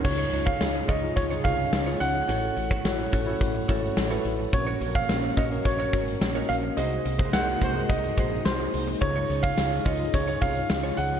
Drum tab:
CC |x---------------|----------------|----------------|----------------|
HH |--x-x-x-xxxxx-x-|x-x-x-x-x-x-x-x-|x-x-x-x-xxxxx-x-|x-x-x-x-xxx-x-o-|
TB |----x-------x---|----x-------x---|----x-------x---|----x-------x---|
SD |----o-------o---|----o-------o---|----o-------o---|----o-------o---|
BD |o--o--o-o-o-----|---o--o-o-o-----|o--o--o-o-o-----|---o--o-o-o-----|

CC |----------------|
HH |x-x-x-x-xxxxx-x-|
TB |----x-------x---|
SD |----o-------o---|
BD |o--o--o-o-o-----|